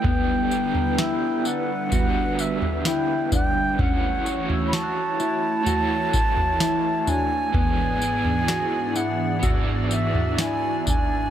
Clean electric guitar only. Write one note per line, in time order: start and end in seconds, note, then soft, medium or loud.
0.05 0.98 B3 medium
0.98 1.45 E4 medium
1.45 1.92 D4 medium
1.92 2.85 F#4 loud
2.86 3.33 E4 medium
3.33 3.79 D4 medium
3.80 4.73 C#4 medium
4.73 5.20 F#4 medium
5.20 5.66 E4 medium
5.67 6.60 F#4 medium
6.61 7.08 E4 medium
7.07 7.54 D4 medium
7.54 8.48 B3 medium
8.48 8.95 F#4 medium
8.95 9.43 E4 medium
9.43 10.39 F#4 medium
10.39 10.88 E4 medium
10.88 11.30 D4 medium